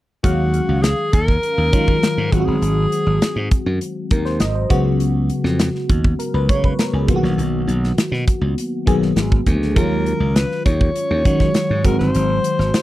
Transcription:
0.23 0.60 D#2 medium
0.23 0.95 D#3 medium
0.23 0.96 F#3 medium
0.23 0.96 G#3 medium
0.23 0.96 C#4 medium
0.23 0.84 F#4 medium
0.23 0.96 F5 medium
0.23 kick medium
0.23 closed hi-hat medium
0.54 closed hi-hat medium
0.69 0.92 C#2 medium
0.82 1.15 G#4 loud
0.82 snare loud
0.82 closed hi-hat medium
1.13 1.37 D#2 medium
1.13 2.34 A#4 loud
1.13 kick medium
1.13 closed hi-hat medium
1.28 kick medium
1.43 closed hi-hat medium
1.58 1.70 D#2 medium
1.72 2.27 D#3 medium
1.72 1.97 D#3 medium
1.72 2.27 F#3 medium
1.72 2.27 G#3 medium
1.72 2.27 C#4 medium
1.72 2.27 F4 medium
1.72 kick medium
1.72 closed hi-hat medium
1.88 kick medium
2.03 snare loud
2.03 closed hi-hat medium
2.18 2.29 G#2 medium
2.32 2.44 G#1 medium
2.32 3.28 D#3 medium
2.32 3.27 F#3 medium
2.32 3.28 G#3 medium
2.32 3.28 C4 medium
2.32 2.39 F4 medium
2.32 2.47 F#4 medium
2.32 kick medium
2.32 closed hi-hat medium
2.40 3.31 F#4 medium
2.46 2.59 G1 medium
2.46 3.66 G#4 medium
2.61 2.85 G#1 medium
2.61 closed hi-hat medium
2.92 closed hi-hat medium
3.06 3.18 G#1 medium
3.22 muted slap bass stroke soft
3.22 snare loud
3.22 closed hi-hat medium
3.36 3.48 G#2 medium
3.51 kick medium
3.51 closed hi-hat medium
3.66 3.78 F#2 medium
3.81 closed hi-hat medium
4.11 4.41 D#2 medium
4.11 4.25 A#4 medium
4.11 kick medium
4.11 closed hi-hat medium
4.25 4.40 C5 medium
4.25 snare soft
4.40 4.64 G#1 medium
4.40 4.55 D#5 medium
4.40 snare loud
4.40 closed hi-hat medium
4.55 4.84 C5 medium
4.70 5.29 C#2 medium
4.70 5.65 C#3 medium
4.70 5.65 F#3 medium
4.70 5.65 G#3 medium
4.70 5.66 B3 medium
4.70 5.66 F#4 medium
4.70 kick medium
4.70 closed hi-hat medium
5.00 closed hi-hat medium
5.30 closed hi-hat medium
5.44 5.68 F2 medium
5.44 snare soft
5.59 snare loud
5.59 closed hi-hat medium
5.75 snare soft
5.89 6.13 D#2 medium
5.89 kick medium
5.89 closed hi-hat medium
6.04 kick medium
6.19 6.33 A#4 medium
6.19 closed hi-hat medium
6.34 6.50 C#2 medium
6.34 6.48 B4 medium
6.49 6.73 C#3 medium
6.49 6.63 C#5 medium
6.49 kick medium
6.49 closed hi-hat medium
6.64 6.79 B4 medium
6.64 kick medium
6.79 6.93 A#4 medium
6.79 snare loud
6.79 closed hi-hat medium
6.93 7.08 C#2 medium
6.93 7.22 G#4 soft
7.08 7.20 B1 medium
7.08 8.04 D#3 medium
7.08 8.04 F#3 medium
7.08 8.04 A#3 medium
7.08 8.04 B3 medium
7.08 7.15 F4 medium
7.08 kick loud
7.08 closed hi-hat medium
7.16 8.07 F#4 medium
7.23 7.35 A#1 medium
7.23 snare soft
7.38 7.62 B1 medium
7.38 closed hi-hat medium
7.67 7.91 B1 medium
7.67 closed hi-hat medium
7.84 snare soft
7.97 muted slap bass stroke soft
7.97 snare loud
7.97 closed hi-hat medium
8.12 8.24 B2 medium
8.12 snare soft
8.28 kick medium
8.28 closed hi-hat medium
8.41 8.54 C#2 medium
8.58 closed hi-hat medium
8.86 9.11 B1 medium
8.86 9.40 D#3 medium
8.86 9.40 F#3 medium
8.86 9.41 A#3 medium
8.86 9.41 B3 medium
8.86 9.41 G#4 medium
8.86 kick medium
8.86 closed hi-hat medium
9.02 snare soft
9.16 9.40 G#1 medium
9.16 snare medium
9.16 closed hi-hat medium
9.32 kick medium
9.46 9.76 D2 medium
9.46 kick medium
9.46 closed hi-hat medium
9.62 snare soft
9.76 10.12 D#2 medium
9.76 10.48 D#3 medium
9.76 9.83 F3 soft
9.76 10.48 G#3 medium
9.76 10.48 C#4 medium
9.76 10.49 F4 medium
9.76 10.37 A#4 medium
9.76 kick loud
9.76 closed hi-hat medium
9.83 10.51 F#3 medium
10.06 closed hi-hat medium
10.20 10.44 C#2 medium
10.36 10.65 B4 medium
10.36 snare loud
10.36 closed hi-hat medium
10.51 snare soft
10.66 10.89 D#2 medium
10.66 11.87 C#5 loud
10.66 kick medium
10.66 closed hi-hat medium
10.81 kick medium
10.96 closed hi-hat medium
11.11 11.22 D#2 medium
11.24 11.79 D#3 medium
11.24 11.49 D#3 medium
11.24 11.79 F#3 medium
11.24 11.79 G#3 medium
11.24 11.79 C#4 medium
11.24 11.79 F#4 medium
11.24 kick medium
11.24 closed hi-hat medium
11.40 kick medium
11.40 snare soft
11.54 snare loud
11.54 closed hi-hat medium
11.70 11.82 G#2 medium
11.84 11.96 G#1 medium
11.84 12.80 D#3 medium
11.84 12.80 F#3 medium
11.84 12.80 G#3 medium
11.84 12.80 C4 medium
11.84 12.80 F#4 medium
11.84 11.99 A#4 medium
11.84 kick medium
11.84 closed hi-hat medium
11.99 12.12 G1 medium
11.99 12.82 C5 medium
11.99 snare soft
12.15 12.38 G#1 medium
12.15 closed hi-hat medium
12.44 closed hi-hat medium
12.59 12.71 G#1 medium
12.59 snare soft
12.74 snare loud
12.74 closed hi-hat medium

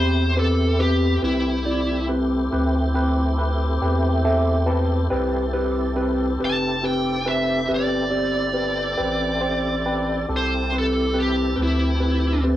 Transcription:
0.00 1.18 E2 medium
0.00 5.08 A3 medium
0.00 0.24 C4 medium
0.00 5.08 C4 medium
0.00 5.08 E4 medium
0.00 0.24 G4 medium
0.00 5.08 G4 medium
0.00 0.36 C5 medium
0.00 0.25 B5 medium
0.36 0.69 C4 soft
0.36 0.68 G4 medium
0.36 0.79 A4 medium
0.36 0.68 B4 medium
0.79 1.12 C4 medium
0.79 1.12 G4 soft
0.79 1.21 G4 medium
0.79 1.11 B4 medium
1.22 2.48 C2 medium
1.22 1.55 C4 medium
1.22 2.07 E4 medium
1.22 1.55 G4 soft
1.22 1.55 B4 medium
1.65 1.98 C4 medium
1.65 1.98 G4 soft
1.65 1.98 D5 medium
2.08 2.41 C4 medium
2.08 2.41 G4 soft
2.08 2.41 B4 medium
2.52 3.78 D2 medium
2.52 2.84 C4 medium
2.52 2.85 G4 medium
2.52 2.85 B4 medium
2.94 3.27 C4 medium
2.94 3.27 G4 medium
2.94 3.28 B4 medium
3.38 3.71 C4 medium
3.38 3.71 G4 medium
3.38 3.71 B4 medium
3.82 5.07 E2 medium
3.82 4.14 C4 medium
3.82 4.14 G4 medium
3.82 4.14 B4 medium
4.24 4.57 C4 medium
4.24 4.57 G4 medium
4.24 4.57 A4 medium
4.24 4.65 E5 medium
4.66 5.00 C4 medium
4.66 5.00 G4 medium
4.66 5.00 B4 medium
4.66 5.08 A5 medium
5.10 6.37 C2 medium
5.10 5.43 C4 medium
5.10 10.26 C4 medium
5.10 10.26 E4 medium
5.10 5.43 G4 medium
5.10 10.26 G4 medium
5.10 10.25 A4 medium
5.10 5.43 B4 medium
5.53 5.86 C4 medium
5.53 5.87 G4 medium
5.53 5.86 B4 medium
5.96 6.29 C4 medium
5.96 6.29 G4 medium
5.96 6.30 B4 medium
6.40 7.66 F1 medium
6.40 6.73 C4 medium
6.40 6.73 G4 soft
6.40 6.73 B4 medium
6.45 6.85 A5 medium
6.83 7.16 C4 medium
6.83 7.16 G4 soft
6.83 7.16 B4 medium
6.83 7.27 G5 medium
7.26 7.59 C4 medium
7.26 7.59 G4 soft
7.26 7.59 B4 medium
7.26 7.70 E5 medium
7.68 8.96 G1 medium
7.68 8.02 C4 medium
7.68 8.02 G4 soft
7.68 8.02 B4 medium
7.74 10.27 D5 medium
8.11 8.44 C4 medium
8.11 8.45 G4 medium
8.11 8.44 D5 medium
8.53 8.87 C4 medium
8.53 8.87 G4 soft
8.53 8.88 B4 medium
8.97 10.25 A1 medium
8.97 9.31 C4 medium
8.97 9.31 G4 medium
8.97 9.31 B4 medium
9.41 9.75 C4 medium
9.41 9.74 G4 medium
9.41 9.74 C5 medium
9.86 10.18 C4 medium
9.86 10.18 G4 medium
9.86 10.18 B4 medium
10.28 11.54 C2 loud
10.28 10.61 C4 medium
10.28 12.57 C4 medium
10.28 12.57 E4 medium
10.28 10.61 G4 medium
10.28 12.57 G4 medium
10.28 10.61 A4 medium
10.28 12.57 A4 medium
10.36 10.75 C5 loud
10.72 11.04 C4 medium
10.72 11.04 G4 soft
10.72 11.05 B4 medium
10.78 11.17 A4 medium
11.14 11.47 C4 medium
11.14 11.47 G4 medium
11.14 11.47 B4 medium
11.20 11.59 G4 medium
11.56 12.57 D2 medium
11.56 11.90 C4 medium
11.56 11.90 G4 medium
11.56 11.89 B4 medium
11.63 12.44 E4 medium
12.00 12.33 C4 medium
12.00 12.33 G4 soft
12.00 12.33 B4 medium
12.44 12.57 C4 medium
12.44 12.57 G4 soft
12.44 12.57 B4 medium

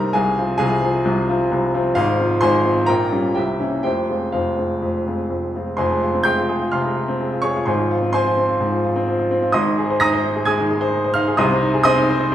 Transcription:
0.00 0.15 C2 medium
0.00 0.15 C3 medium
0.00 0.17 G3 medium
0.00 0.17 C4 medium
0.00 0.16 D#4 medium
0.00 0.16 G4 medium
0.00 0.12 A#4 medium
0.00 0.17 C5 medium
0.00 0.17 D5 medium
0.00 0.16 D#5 medium
0.00 0.17 G5 medium
0.00 0.13 A#5 loud
0.00 0.16 C6 medium
0.00 0.16 D6 loud
0.13 0.37 C2 medium
0.13 0.36 C3 medium
0.13 0.56 G#4 medium
0.13 0.56 F5 medium
0.13 0.56 G#5 loud
0.38 0.58 F3 medium
0.38 0.58 C4 medium
0.38 0.58 F4 medium
0.58 0.81 C2 medium
0.58 0.82 C3 medium
0.58 1.92 G#4 medium
0.58 1.92 F5 medium
0.58 1.95 G#5 loud
0.82 1.03 F3 medium
0.82 1.03 C4 medium
0.82 1.03 F4 medium
1.05 1.27 C2 medium
1.05 1.27 C3 medium
1.29 1.49 F3 medium
1.29 1.49 C4 medium
1.29 1.49 F4 medium
1.51 1.73 C2 medium
1.51 1.73 C3 medium
1.74 1.94 F3 medium
1.74 1.95 C4 medium
1.74 1.95 F4 medium
1.95 2.19 G#1 medium
1.95 2.19 G#2 medium
1.95 2.19 F4 medium
1.95 2.39 C5 medium
1.95 2.41 F5 loud
2.20 2.40 F3 medium
2.20 2.40 C4 medium
2.20 2.40 F4 medium
2.41 2.65 G#1 medium
2.41 2.64 G#2 medium
2.41 2.85 C5 medium
2.41 2.85 G#5 medium
2.41 2.88 C6 loud
2.65 2.86 F3 medium
2.65 2.86 C4 medium
2.65 2.86 F4 medium
2.86 3.11 A#1 medium
2.86 3.11 A#2 medium
2.86 3.32 A#4 medium
2.86 3.32 G5 medium
2.86 3.35 A#5 loud
3.12 3.33 G3 medium
3.12 3.33 C#4 medium
3.12 3.34 F4 medium
3.34 3.59 C2 medium
3.34 3.59 C3 medium
3.34 3.81 G4 medium
3.34 3.81 E5 medium
3.34 3.82 G5 medium
3.60 3.82 A#3 soft
3.60 3.82 C#4 medium
3.60 3.82 E4 medium
3.83 4.09 F1 medium
3.83 4.09 F2 medium
3.83 4.30 G4 medium
3.83 4.30 C5 medium
3.83 4.33 G5 medium
4.09 4.32 G#3 soft
4.09 4.32 C4 soft
4.09 4.32 F4 soft
4.32 4.58 F1 medium
4.32 4.58 F2 medium
4.32 4.58 F4 soft
4.32 5.52 C5 medium
4.32 5.55 F5 medium
4.58 4.80 G#3 soft
4.58 4.80 C4 soft
4.58 4.81 F4 soft
4.82 5.06 F1 medium
4.82 5.06 F2 medium
5.07 5.29 G#3 soft
5.07 5.29 C4 soft
5.07 5.29 F4 medium
5.30 5.55 F1 soft
5.30 5.55 F2 medium
5.55 5.77 G#3 soft
5.55 5.77 C4 soft
5.55 5.78 F4 medium
5.77 6.70 F1 medium
5.77 6.71 F2 medium
5.77 6.23 C5 medium
5.77 6.23 G#5 medium
5.77 6.23 C6 medium
5.91 6.10 G#3 medium
6.03 6.22 F4 medium
6.14 6.33 C4 medium
6.23 6.45 G#3 medium
6.23 6.69 G5 medium
6.23 6.70 C6 medium
6.23 6.72 G6 loud
6.37 6.57 F4 medium
6.49 6.68 G#4 medium
6.62 6.81 F4 medium
6.72 6.93 C3 medium
6.72 7.40 F5 medium
6.72 7.40 C6 medium
6.72 7.43 F6 medium
6.85 7.04 G#3 medium
6.97 7.16 F4 medium
7.08 7.28 C4 medium
7.20 7.39 G#3 medium
7.32 7.51 F4 medium
7.42 7.63 G#4 medium
7.42 7.66 C#5 medium
7.42 7.67 C#6 loud
7.56 7.68 F4 medium
7.66 8.58 G#1 medium
7.66 8.58 G#2 medium
7.66 8.11 C5 medium
7.66 8.11 G#5 medium
7.66 8.11 C6 medium
7.79 7.99 F3 medium
7.91 8.10 F4 medium
8.02 8.22 C4 medium
8.13 8.34 F3 medium
8.13 9.49 C5 medium
8.13 9.49 G#5 medium
8.13 9.53 C6 loud
8.26 8.45 F4 medium
8.37 8.56 C4 medium
8.49 8.68 F4 medium
8.60 9.50 G#2 medium
8.72 8.91 F3 medium
8.84 9.03 F4 medium
8.96 9.14 C4 medium
9.08 9.26 F3 medium
9.19 9.38 F4 medium
9.31 9.49 C4 medium
9.42 9.54 F4 medium
9.52 10.44 G#1 medium
9.52 10.44 G#2 medium
9.52 9.97 D#5 medium
9.52 9.97 C6 medium
9.52 9.99 D#6 loud
9.67 9.85 D#3 medium
9.78 9.96 G#4 medium
9.90 10.08 C5 medium
10.00 10.20 D#4 medium
10.00 10.44 A#5 loud
10.00 10.44 D#6 loud
10.00 10.46 A#6 loud
10.14 10.31 C5 medium
10.24 10.42 D#4 medium
10.36 10.54 G#4 medium
10.45 10.65 G#3 medium
10.45 11.12 G#5 medium
10.45 11.12 D#6 medium
10.45 11.16 G#6 loud
10.59 10.77 D#3 medium
10.70 10.89 G#4 medium
10.81 11.00 C5 medium
10.92 11.11 D#4 medium
11.04 11.23 C5 medium
11.14 11.34 D#4 medium
11.14 11.37 F5 medium
11.14 11.38 F6 loud
11.28 11.39 G#4 medium
11.37 12.29 C2 loud
11.37 12.29 C3 loud
11.37 11.82 D#5 medium
11.37 11.82 C6 medium
11.37 11.82 D#6 loud
11.51 11.70 C4 medium
11.62 11.81 D#4 medium
11.74 11.93 G#4 medium
11.83 12.04 C4 loud
11.83 12.35 D#5 loud
11.83 12.35 C6 loud
11.83 12.35 D#6 loud
11.98 12.16 D#4 medium
12.09 12.28 C5 medium
12.20 12.35 D#4 medium
12.32 12.35 C3 loud

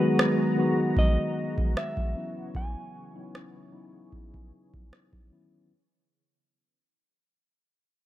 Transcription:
0.00 0.56 D#3 loud
0.00 0.58 F#3 medium
0.00 0.57 G#3 medium
0.00 2.13 G#3 medium
0.00 0.58 B3 medium
0.00 5.66 B3 medium
0.00 0.59 F#4 loud
0.00 3.69 F#4 medium
0.00 0.45 G#4 medium
0.00 0.94 B4 medium
0.00 2.13 A#5 medium
0.19 cross-stick loud
0.56 1.76 D#3 medium
0.56 1.77 F#3 medium
0.56 1.76 G#3 medium
0.56 1.77 B3 medium
0.56 1.77 F#4 medium
0.97 1.77 D#5 medium
0.97 kick medium
1.58 kick medium
1.77 2.56 E5 medium
1.77 cross-stick loud
1.97 kick medium
2.14 5.67 C#3 medium
2.14 2.94 E3 medium
2.14 5.67 E3 medium
2.14 2.94 F#3 medium
2.14 2.94 B3 medium
2.14 2.95 C#4 medium
2.14 2.95 E4 medium
2.14 5.67 C#5 medium
2.55 4.05 G#5 medium
2.55 kick loud
3.14 3.60 F#3 medium
3.14 3.60 B3 medium
3.14 3.60 C#4 medium
3.14 3.59 D#4 medium
3.14 3.61 E4 medium
3.35 cross-stick loud
3.72 4.92 F#3 medium
3.72 4.92 B3 medium
3.72 4.93 C#4 medium
3.72 4.91 D#4 medium
3.72 4.93 E4 medium
3.72 5.68 G#4 medium
4.05 4.88 F#5 medium
4.13 kick medium
4.34 kick medium
4.74 kick medium
4.93 cross-stick loud
5.13 kick medium
5.30 5.61 D#3 medium
5.30 5.61 F#3 medium
5.30 5.62 B3 medium
5.30 5.62 C#4 medium
5.30 5.62 E4 medium

